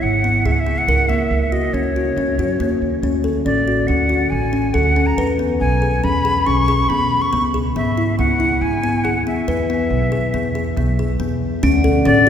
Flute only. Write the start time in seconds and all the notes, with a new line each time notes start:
0.02 F#5
0.46 E5
0.52 F#5
0.60 E5
0.78 F#5
1.09 E5
1.52 D#5
1.73 C#5
3.45 D5
3.87 F#5
4.30 G#5
4.74 F#5
5.06 A#5
5.60 G#5
6.04 B5
6.46 C#6
6.89 B5
7.22 C#6
7.76 E5
8.19 F#5
8.61 G#5
9.04 F#5
9.26 E5
12.06 D5